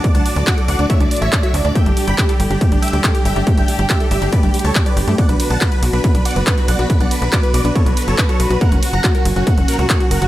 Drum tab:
RD |--------------------------------|--------------------------------|--------------------------------|----x-------x-------x-------x---|
HH |x-x-o-x-x-x-o-x-x-x-oxx-x-x-o-x-|x-x-o-x-x-x-o-x-x-x-oxx-x-x-o-x-|x-x-o-x-x-x-o-x-x-x-oxx-x-x-o-x-|x-x-o-x-x-x-o-x-x-x-oxx-x-x-o-x-|
CP |--------x---------------x-------|--------x---------------x-------|--------x---------------x-------|--------x---------------x-------|
BD |o-------o-------o-------o-------|o-------o-------o-------o-------|o-------o-------o-------o-------|o-------o-------o-------o-------|

RD |----x-------x-------x-------x---|----x-------x-------x-------x---|
HH |x-x-o-x-x-x-o-x-x-x-oxx-x-x-o-x-|x-x-o-x-x-x-o-x-x-x-oxx-x-x-o-x-|
CP |--------x---------------x-------|--------x---------------x-------|
BD |o-------o-------o-------o-------|o-------o-------o-------o-------|